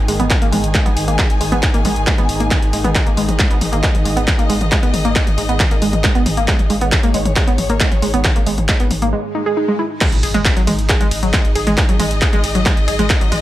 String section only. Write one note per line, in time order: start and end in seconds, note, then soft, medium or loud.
0.00 9.13 D#4 medium
0.00 9.13 G#4 medium
0.00 3.28 G#5 medium
3.26 6.81 D#5 medium
6.79 9.15 C#5 medium
10.01 13.41 D#4 medium
10.81 13.41 G#4 medium
10.94 13.41 D#5 medium